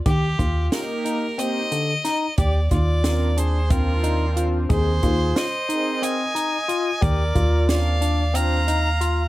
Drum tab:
HH |xxxxxxx|xxxxxxx|xxxxxxx|xxxxxxx|
SD |--o---o|--o----|--o----|--o----|
BD |oo-----|oo--o--|oo-----|oo-----|